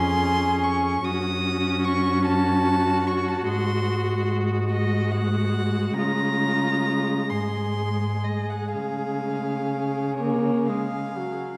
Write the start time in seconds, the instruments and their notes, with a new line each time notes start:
Already playing: cello F2, viola C#4, violin G#4 C6
0.64 violin C#6
1.04 cello F#2, viola C#4, violin F#4 D#6
1.84 violin C#6
2.26 violin A5
3.07 violin C#6
3.28 violin A5
3.46 cello G#2, viola G#3, violin C6
4.71 violin D#5
5.11 violin F#5
5.97 cello C#3, violin F4 A#5
7.30 cello G#2, violin G#4 C6
8.24 violin D#5
8.50 violin F#5
8.73 cello C#3, viola G#3, violin F5
10.17 viola A#3, violin C#5
10.66 viola G#3, violin F5
11.17 viola F#3